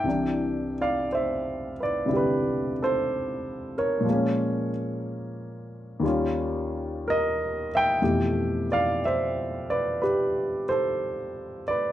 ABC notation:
X:1
M:4/4
L:1/8
Q:"Swing" 1/4=61
K:C
V:1 name="Grand piano"
[eg] [df] [ce] [Bd] [GB] [Ac]2 [_B_d]- | [_B_d] z4 z [B_e] [=eg]- | [eg] [df] [ce] [Bd] [GB] [Ac]2 [Bd] |]
V:2 name="Grand piano" clef=bass
[C,,C,E,D]4 [C,D,G,E]4 | [_B,,F,_A,_B,_D]4 [_E,,_E,G,DF]4 | [F,,B,,E,A,G]8 |]